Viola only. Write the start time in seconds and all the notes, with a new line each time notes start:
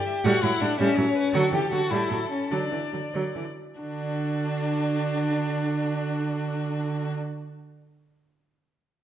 0.25 G3
0.44 F#3
0.62 G3
0.79 G3
0.97 F#3
1.34 F#3
1.53 E3
1.72 F#3
1.91 G3
2.10 F#3
2.51 F#3
2.72 E3
2.92 F#3
3.14 F#3
3.36 E3
3.80 D4